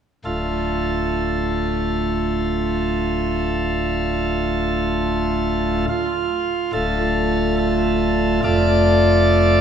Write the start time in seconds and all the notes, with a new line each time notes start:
0.25 D1 D2 A3 F4 A4
5.89 F4
6.73 D1 D2 A3 F4 A4
7.58 A4
8.44 F1 F2 A3 F4 A4 D5